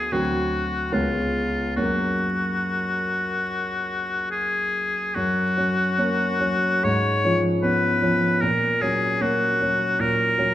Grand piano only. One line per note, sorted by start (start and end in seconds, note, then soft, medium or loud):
0.00 0.12 D2 soft
0.00 0.12 F#3 soft
0.00 0.15 B3 soft
0.00 0.12 F#4 soft
0.12 0.91 D2 soft
0.12 0.91 F#3 soft
0.12 0.91 C4 soft
0.12 0.91 F#4 soft
0.92 1.75 C#2 soft
0.92 1.75 G#3 soft
0.92 1.75 B3 soft
0.92 1.75 C#4 soft
1.77 5.12 F#2 soft
1.77 5.12 F#3 soft
1.77 5.12 A#3 soft
1.77 5.12 C#4 soft
5.16 6.79 F#2 soft
5.57 5.94 F#3 soft
5.57 5.94 C#4 soft
5.98 6.37 A#3 soft
5.98 6.37 C#4 soft
6.40 6.79 F#3 soft
6.40 6.80 C#4 soft
6.84 8.38 G#2 soft
7.24 7.60 F3 soft
7.24 7.60 C#4 soft
7.63 7.99 B3 soft
7.63 7.99 C#4 soft
8.02 8.38 F3 soft
8.02 8.38 C#4 soft
8.42 9.96 A#2 soft
8.81 9.17 F#3 soft
8.81 9.18 C#4 soft
9.21 9.56 A#3 soft
9.21 9.57 C#4 soft
9.62 9.96 F#3 soft
9.62 9.96 C#4 soft
9.99 10.54 A#2 soft
10.38 10.54 F#3 soft
10.38 10.54 C#4 soft